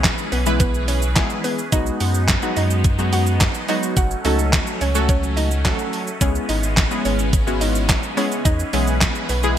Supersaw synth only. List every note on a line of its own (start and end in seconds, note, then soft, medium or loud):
0.00 1.70 E3 medium
0.00 1.68 C#4 loud
0.00 1.70 G#4 medium
0.00 1.70 B4 medium
1.72 3.94 G#3 medium
1.72 3.94 B3 medium
1.72 3.94 D#4 loud
3.96 6.19 F#3 medium
3.96 6.19 A3 medium
3.96 6.19 C#4 loud
6.21 8.43 C#3 medium
6.21 8.43 G#3 medium
6.21 8.43 B3 medium
6.21 9.58 C#4 medium
8.45 9.58 E3 medium
8.45 9.58 G#4 medium
8.45 9.58 B4 medium